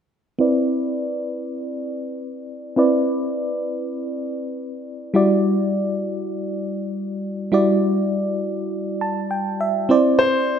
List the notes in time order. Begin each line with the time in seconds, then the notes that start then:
0.39 C4 E4 B4 D5
2.76 C4 E4 B4 D5
5.14 G3 E4 F#4 D5
7.52 G3 E4 F#4 D5
9.01 A5
9.31 G5
9.61 E5
9.89 C4 E4 C5 D5
10.19 C5